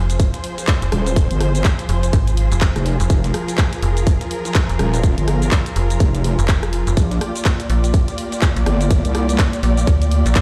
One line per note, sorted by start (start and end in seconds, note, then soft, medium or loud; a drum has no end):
0.00 0.32 F1 loud
0.00 6.93 F3 medium
0.00 10.41 F4 medium
0.00 6.93 G#4 medium
0.00 3.06 C5 medium
0.00 impact medium
0.10 closed hi-hat soft
0.10 shaker medium
0.20 kick loud
0.20 closed hi-hat medium
0.20 shaker medium
0.34 snare soft
0.34 closed hi-hat medium
0.34 shaker soft
0.44 closed hi-hat medium
0.44 open hi-hat loud
0.58 snare medium
0.58 closed hi-hat soft
0.58 shaker medium
0.67 kick loud
0.67 snare loud
0.67 clap loud
0.67 closed hi-hat medium
0.67 shaker medium
0.82 0.91 F1 medium
0.82 closed hi-hat medium
0.82 closed hi-hat soft
0.82 shaker soft
0.92 1.28 D#1 medium
0.92 cross-stick medium
0.92 closed hi-hat medium
0.92 open hi-hat medium
1.06 closed hi-hat soft
1.06 shaker medium
1.16 kick loud
1.16 closed hi-hat medium
1.16 shaker medium
1.31 1.63 G1 medium
1.31 closed hi-hat medium
1.31 shaker soft
1.41 cross-stick medium
1.41 closed hi-hat medium
1.41 open hi-hat loud
1.55 closed hi-hat soft
1.55 shaker medium
1.64 kick loud
1.64 snare loud
1.64 clap loud
1.64 closed hi-hat medium
1.64 shaker medium
1.79 closed hi-hat medium
1.79 shaker soft
1.89 2.12 F1 loud
1.89 closed hi-hat medium
1.89 open hi-hat loud
2.03 closed hi-hat soft
2.03 shaker medium
2.13 2.49 G#1 loud
2.13 kick loud
2.13 closed hi-hat medium
2.13 shaker medium
2.27 closed hi-hat medium
2.27 shaker soft
2.37 closed hi-hat medium
2.37 open hi-hat loud
2.52 2.74 F1 loud
2.52 closed hi-hat soft
2.52 shaker medium
2.61 kick loud
2.61 snare loud
2.61 clap loud
2.61 closed hi-hat medium
2.61 shaker medium
2.76 2.98 F1 loud
2.76 cross-stick medium
2.76 closed hi-hat medium
2.76 shaker soft
2.86 closed hi-hat medium
2.86 open hi-hat loud
3.00 3.08 F1 medium
3.00 closed hi-hat soft
3.00 shaker medium
3.10 3.33 F1 loud
3.10 6.93 A#4 loud
3.10 kick loud
3.10 closed hi-hat medium
3.10 shaker medium
3.24 snare soft
3.24 closed hi-hat medium
3.24 shaker soft
3.34 cross-stick medium
3.34 closed hi-hat medium
3.34 open hi-hat loud
3.48 closed hi-hat soft
3.48 shaker medium
3.58 kick loud
3.58 snare loud
3.58 clap loud
3.58 closed hi-hat medium
3.58 shaker medium
3.73 snare medium
3.73 closed hi-hat medium
3.73 shaker soft
3.83 4.19 F1 loud
3.83 closed hi-hat medium
3.83 open hi-hat loud
3.97 closed hi-hat soft
3.97 shaker medium
4.07 kick loud
4.07 closed hi-hat medium
4.07 shaker medium
4.21 snare soft
4.21 closed hi-hat medium
4.21 shaker soft
4.31 closed hi-hat medium
4.31 open hi-hat loud
4.45 snare medium
4.45 closed hi-hat soft
4.45 shaker medium
4.55 kick loud
4.55 snare loud
4.55 clap loud
4.55 closed hi-hat medium
4.55 shaker medium
4.69 4.78 F1 medium
4.69 closed hi-hat soft
4.69 shaker soft
4.79 5.16 D#1 loud
4.79 cross-stick medium
4.79 closed hi-hat medium
4.79 open hi-hat loud
4.94 closed hi-hat soft
4.94 shaker medium
5.04 kick loud
5.04 closed hi-hat medium
5.04 shaker medium
5.18 5.50 G1 loud
5.18 closed hi-hat medium
5.18 shaker soft
5.28 cross-stick medium
5.28 closed hi-hat medium
5.28 open hi-hat loud
5.42 closed hi-hat soft
5.42 shaker medium
5.51 kick loud
5.51 snare loud
5.51 clap loud
5.51 closed hi-hat medium
5.51 shaker medium
5.66 closed hi-hat soft
5.66 shaker soft
5.76 5.99 F1 loud
5.76 closed hi-hat medium
5.76 open hi-hat loud
5.90 closed hi-hat soft
5.90 shaker medium
6.00 6.37 F1 loud
6.00 kick loud
6.00 closed hi-hat medium
6.00 shaker medium
6.15 closed hi-hat medium
6.15 shaker soft
6.24 closed hi-hat medium
6.24 open hi-hat loud
6.39 6.85 F1 loud
6.39 closed hi-hat soft
6.39 shaker medium
6.48 kick loud
6.48 snare loud
6.48 clap loud
6.48 closed hi-hat medium
6.48 shaker medium
6.63 cross-stick medium
6.63 closed hi-hat medium
6.63 shaker soft
6.73 closed hi-hat medium
6.73 open hi-hat medium
6.87 6.95 F1 loud
6.87 closed hi-hat soft
6.87 shaker medium
6.97 7.20 A#1 loud
6.97 10.41 A#3 medium
6.97 10.41 G4 medium
6.97 10.41 D5 medium
6.97 kick loud
6.97 closed hi-hat medium
6.97 shaker medium
7.11 snare medium
7.11 closed hi-hat medium
7.11 shaker soft
7.21 cross-stick medium
7.21 closed hi-hat medium
7.21 open hi-hat loud
7.35 closed hi-hat soft
7.35 shaker medium
7.45 kick loud
7.45 snare loud
7.45 clap loud
7.45 closed hi-hat medium
7.45 shaker medium
7.60 snare soft
7.60 closed hi-hat medium
7.60 shaker soft
7.70 8.06 A#1 loud
7.70 closed hi-hat medium
7.70 open hi-hat medium
7.84 closed hi-hat soft
7.84 shaker medium
7.94 kick loud
7.94 closed hi-hat medium
7.94 shaker medium
8.08 snare soft
8.08 closed hi-hat medium
8.08 shaker soft
8.18 closed hi-hat medium
8.18 open hi-hat loud
8.32 snare medium
8.32 closed hi-hat soft
8.32 shaker medium
8.42 kick loud
8.42 snare loud
8.42 clap loud
8.42 closed hi-hat medium
8.42 shaker medium
8.56 8.65 A#1 medium
8.56 closed hi-hat medium
8.56 closed hi-hat soft
8.56 shaker soft
8.66 9.03 G1 loud
8.66 cross-stick medium
8.66 closed hi-hat medium
8.66 open hi-hat loud
8.81 closed hi-hat soft
8.81 shaker medium
8.91 kick loud
8.91 closed hi-hat medium
8.91 shaker medium
9.05 9.37 C2 medium
9.05 closed hi-hat medium
9.05 shaker soft
9.15 cross-stick medium
9.15 closed hi-hat medium
9.15 open hi-hat loud
9.29 closed hi-hat soft
9.29 shaker medium
9.38 kick loud
9.38 snare loud
9.38 clap loud
9.38 closed hi-hat medium
9.38 shaker medium
9.53 closed hi-hat medium
9.53 shaker soft
9.63 9.86 A#1 loud
9.63 closed hi-hat medium
9.63 open hi-hat medium
9.77 closed hi-hat soft
9.77 shaker medium
9.87 10.24 D2 loud
9.87 kick loud
9.87 closed hi-hat medium
9.87 shaker medium
10.02 closed hi-hat medium
10.02 shaker soft
10.11 closed hi-hat medium
10.11 open hi-hat loud
10.26 10.41 A#1 loud
10.26 closed hi-hat soft
10.26 shaker medium
10.35 kick loud
10.35 snare loud
10.35 clap loud
10.35 closed hi-hat medium
10.35 shaker medium